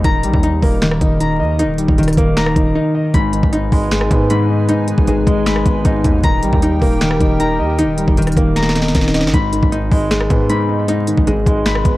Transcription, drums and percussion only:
0.04 kick, closed hi-hat
0.23 closed hi-hat
0.34 kick
0.43 closed hi-hat
0.62 kick, open hi-hat
0.82 finger snap, snare, closed hi-hat
0.91 cross-stick
1.01 kick, closed hi-hat
1.21 closed hi-hat
1.59 closed hi-hat
1.78 closed hi-hat
1.88 kick
1.98 closed hi-hat
2.03 closed hi-hat
2.08 cross-stick, closed hi-hat
2.13 closed hi-hat
2.17 kick, closed hi-hat
2.37 finger snap, snare, closed hi-hat
2.46 cross-stick
2.56 kick, closed hi-hat
3.14 kick, closed hi-hat
3.33 closed hi-hat
3.43 kick
3.53 closed hi-hat
3.72 kick, open hi-hat
3.91 finger snap, snare, closed hi-hat
4.01 cross-stick
4.11 kick, closed hi-hat
4.30 closed hi-hat
4.69 closed hi-hat
4.88 closed hi-hat
4.98 kick
5.07 closed hi-hat
5.27 kick, closed hi-hat
5.46 finger snap, snare, closed hi-hat
5.56 cross-stick
5.66 kick, closed hi-hat
5.85 kick, closed hi-hat
6.04 kick, closed hi-hat
6.24 kick, closed hi-hat
6.43 closed hi-hat
6.53 kick
6.62 closed hi-hat
6.82 kick, open hi-hat
7.01 finger snap, snare, closed hi-hat
7.11 cross-stick
7.21 kick, closed hi-hat
7.40 closed hi-hat
7.79 closed hi-hat
7.98 closed hi-hat
8.08 kick
8.17 closed hi-hat
8.22 closed hi-hat
8.27 cross-stick, closed hi-hat
8.32 closed hi-hat
8.37 kick, closed hi-hat
8.56 snare, closed hi-hat
8.63 snare
8.69 snare
8.75 snare, closed hi-hat
8.82 snare
8.88 snare
8.95 kick, snare, closed hi-hat
9.01 snare
9.08 snare
9.14 snare, closed hi-hat
9.21 snare
9.27 snare
9.34 kick, closed hi-hat
9.53 closed hi-hat
9.63 kick
9.72 closed hi-hat
9.92 kick, open hi-hat
10.11 finger snap, snare, closed hi-hat
10.21 cross-stick
10.30 kick, closed hi-hat
10.50 closed hi-hat
10.88 closed hi-hat
11.07 closed hi-hat
11.17 kick
11.27 closed hi-hat
11.46 kick, closed hi-hat
11.66 finger snap, snare, closed hi-hat
11.75 cross-stick
11.85 kick, closed hi-hat

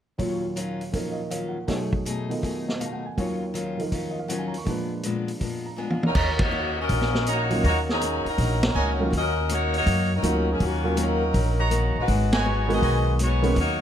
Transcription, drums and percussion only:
0.19 kick, open hi-hat
0.57 closed hi-hat
0.81 open hi-hat
0.93 kick, open hi-hat
1.31 closed hi-hat
1.68 kick, snare, open hi-hat
1.93 kick
2.06 closed hi-hat
2.31 open hi-hat
2.43 kick, open hi-hat
2.69 snare
2.81 closed hi-hat
3.18 kick, open hi-hat
3.55 closed hi-hat
3.79 open hi-hat
3.92 kick, open hi-hat
4.30 closed hi-hat
4.54 open hi-hat
4.66 kick, open hi-hat
5.03 closed hi-hat
5.28 open hi-hat
5.41 kick, open hi-hat
5.90 high tom
6.03 high tom
6.15 kick, crash
6.39 kick, ride
6.89 kick, open hi-hat
7.01 snare
7.15 snare
7.26 closed hi-hat
7.51 open hi-hat
7.64 kick, open hi-hat
7.89 snare
8.01 closed hi-hat
8.26 open hi-hat
8.38 kick, open hi-hat
8.63 snare, ride
9.13 kick, open hi-hat
9.49 closed hi-hat
9.74 open hi-hat
9.87 kick, open hi-hat
10.23 closed hi-hat
10.60 kick, open hi-hat
10.97 closed hi-hat
11.34 kick, open hi-hat
11.71 closed hi-hat
12.08 kick, open hi-hat
12.33 snare, ride
12.70 open hi-hat
12.82 kick, open hi-hat
13.19 closed hi-hat
13.44 open hi-hat
13.56 kick, open hi-hat

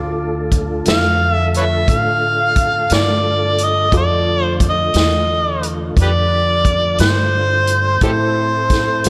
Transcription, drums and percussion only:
0.52 kick, closed hi-hat
0.85 snare, closed hi-hat
1.54 closed hi-hat
1.88 kick, closed hi-hat
2.56 kick, closed hi-hat
2.90 snare, closed hi-hat
3.58 closed hi-hat
3.92 kick, closed hi-hat
4.60 kick, closed hi-hat
4.94 snare, closed hi-hat
5.63 closed hi-hat
5.97 kick, closed hi-hat
6.65 kick, closed hi-hat
6.98 snare, closed hi-hat
7.67 closed hi-hat
8.01 kick, closed hi-hat
8.70 kick, snare, closed hi-hat
9.04 closed hi-hat

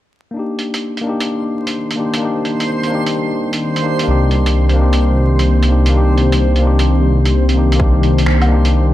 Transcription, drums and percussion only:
0.59 closed hi-hat
0.74 closed hi-hat
0.97 closed hi-hat
1.20 closed hi-hat
1.67 closed hi-hat
1.91 closed hi-hat
2.14 closed hi-hat
2.45 closed hi-hat
2.60 closed hi-hat
2.83 closed hi-hat
3.06 closed hi-hat
3.53 closed hi-hat
3.76 closed hi-hat
3.99 closed hi-hat
4.31 closed hi-hat
4.46 closed hi-hat
4.69 closed hi-hat
4.93 closed hi-hat
5.39 closed hi-hat
5.63 closed hi-hat
5.86 closed hi-hat
6.18 closed hi-hat
6.32 closed hi-hat
6.56 closed hi-hat
6.79 closed hi-hat
7.26 closed hi-hat
7.49 closed hi-hat
7.72 closed hi-hat
7.80 kick
8.03 closed hi-hat
8.18 closed hi-hat
8.26 finger snap
8.42 closed hi-hat, low woodblock
8.65 closed hi-hat

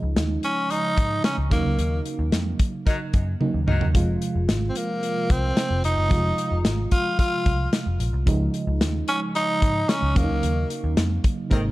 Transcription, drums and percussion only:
0.16 snare, closed hi-hat
0.43 closed hi-hat
0.70 closed hi-hat
0.97 kick, closed hi-hat
1.24 snare, closed hi-hat
1.51 kick, closed hi-hat
1.79 closed hi-hat
2.06 closed hi-hat
2.32 snare, closed hi-hat
2.59 kick, closed hi-hat
2.87 kick, closed hi-hat
3.13 kick, closed hi-hat
3.41 high tom
3.68 mid tom
3.81 floor tom
3.95 kick, closed hi-hat
4.22 closed hi-hat
4.49 snare, closed hi-hat
4.75 closed hi-hat
5.03 closed hi-hat
5.30 kick, closed hi-hat
5.57 snare, closed hi-hat
5.84 closed hi-hat
6.11 kick, closed hi-hat
6.38 closed hi-hat
6.65 snare, closed hi-hat
6.91 kick, closed hi-hat
7.19 kick, closed hi-hat
7.46 kick, closed hi-hat
7.73 snare, closed hi-hat
8.00 closed hi-hat
8.27 kick, closed hi-hat
8.54 closed hi-hat
8.81 snare, closed hi-hat
9.08 closed hi-hat
9.35 closed hi-hat
9.62 kick, closed hi-hat
9.89 snare, closed hi-hat
10.16 kick, closed hi-hat
10.43 closed hi-hat
10.70 closed hi-hat
10.97 snare, closed hi-hat
11.24 kick, closed hi-hat
11.51 kick, closed hi-hat

